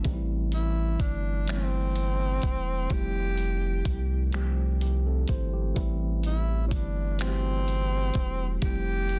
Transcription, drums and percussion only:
0.05 kick loud
0.05 closed hi-hat medium
0.52 closed hi-hat soft
1.00 kick medium
1.00 closed hi-hat medium
1.48 finger snap medium
1.48 closed hi-hat medium
1.95 closed hi-hat soft
2.42 kick medium
2.42 closed hi-hat medium
2.90 kick loud
2.90 closed hi-hat medium
3.37 closed hi-hat soft
3.85 kick medium
3.85 closed hi-hat medium
4.33 finger snap medium
4.33 closed hi-hat medium
4.81 closed hi-hat soft
5.28 kick medium
5.28 closed hi-hat medium
5.76 kick loud
5.76 closed hi-hat medium
6.23 closed hi-hat soft
6.71 kick medium
6.71 closed hi-hat medium
7.19 finger snap medium
7.19 closed hi-hat medium
7.68 closed hi-hat soft
8.14 kick medium
8.14 closed hi-hat medium
8.62 kick medium
8.62 closed hi-hat medium
9.09 closed hi-hat soft

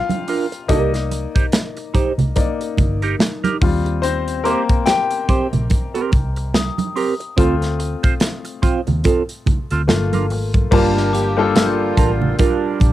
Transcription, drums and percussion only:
0.09 closed hi-hat soft
0.09 high conga medium
0.28 open hi-hat medium
0.52 closed hi-hat soft
0.69 kick loud
0.69 closed hi-hat medium
0.94 snare soft
0.94 closed hi-hat soft
1.11 closed hi-hat medium
1.11 muted conga soft
1.36 kick medium
1.36 closed hi-hat soft
1.52 snare loud
1.52 closed hi-hat medium
1.52 high conga medium
1.77 closed hi-hat soft
1.95 kick medium
1.95 closed hi-hat medium
1.95 muted conga soft
2.19 closed hi-hat soft
2.19 low conga medium
2.36 kick medium
2.36 closed hi-hat medium
2.36 muted conga soft
2.61 closed hi-hat soft
2.77 kick medium
2.77 closed hi-hat medium
2.77 muted conga soft
2.77 low conga medium
3.02 closed hi-hat soft
3.19 snare loud
3.19 closed hi-hat medium
3.19 high conga medium
3.44 closed hi-hat soft
3.44 high conga medium
3.62 kick loud
3.62 open hi-hat medium
3.86 closed hi-hat soft
4.03 closed hi-hat medium
4.28 closed hi-hat soft
4.45 closed hi-hat medium
4.69 kick medium
4.69 closed hi-hat soft
4.86 snare loud
4.86 closed hi-hat medium
4.86 high conga medium
5.11 closed hi-hat soft
5.29 kick medium
5.29 closed hi-hat medium
5.29 muted conga soft
5.53 closed hi-hat soft
5.53 low conga medium
5.70 kick medium
5.70 closed hi-hat medium
5.70 muted conga soft
5.95 closed hi-hat soft
6.12 kick medium
6.12 closed hi-hat medium
6.12 muted conga soft
6.36 closed hi-hat soft
6.54 snare loud
6.54 closed hi-hat medium
6.54 high conga medium
6.78 closed hi-hat soft
6.78 high conga medium
6.96 open hi-hat medium
7.20 closed hi-hat soft
7.38 kick medium
7.38 closed hi-hat medium
7.62 snare soft
7.62 closed hi-hat soft
7.80 closed hi-hat medium
8.04 kick medium
8.04 closed hi-hat soft
8.20 snare loud
8.20 closed hi-hat loud
8.20 high conga medium
8.45 closed hi-hat soft
8.63 kick medium
8.63 closed hi-hat medium
8.63 muted conga soft
8.87 closed hi-hat soft
8.87 low conga medium
9.04 kick medium
9.04 closed hi-hat medium
9.04 muted conga soft
9.29 closed hi-hat soft
9.46 kick medium
9.46 closed hi-hat medium
9.46 muted conga soft
9.46 low conga medium
9.71 closed hi-hat soft
9.88 snare loud
9.88 closed hi-hat medium
9.88 high conga medium
10.13 closed hi-hat soft
10.13 high conga medium
10.30 open hi-hat medium
10.54 kick medium
10.54 closed hi-hat soft
10.54 high conga soft
10.72 kick loud
10.72 crash medium
10.97 snare soft
11.14 closed hi-hat medium
11.14 muted conga soft
11.56 snare loud
11.56 closed hi-hat loud
11.56 high conga medium
11.97 kick medium
11.97 closed hi-hat medium
11.97 muted conga soft
12.22 low conga medium
12.39 kick medium
12.39 closed hi-hat medium
12.39 muted conga medium
12.80 kick medium
12.80 closed hi-hat medium
12.80 muted conga soft

